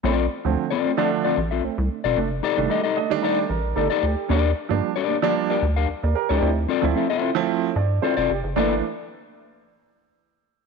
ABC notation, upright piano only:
X:1
M:4/4
L:1/16
Q:1/4=113
K:Gm
V:1 name="Upright piano"
z16 | z6 e d c2 B2 A2 G2 | z12 z [Bd] [GB] [EG]- | [EG] z8 z d2 c2 G2 |
z16 |]
V:2 name="Upright piano"
[A,C] [A,C] z [D,F,A,C] z2 [A,C] [D,F,A,D]2 z3 [A,C] [A,C] [A,D] z | [A,D] [A,D] z [E,G,A,D] z2 [A,D] [E,G,A,D]2 z3 [A,D] z [A,D] z | [B,D] z2 [F,G,B,D] z2 [B,D] [F,G,B,D]2 z6 z | [C=E] [CE] z [F,A,CE] z2 [CE] [F,A,CE]2 z3 [CE] [CE] C z |
[=E,A,B,D]2 z12 z2 |]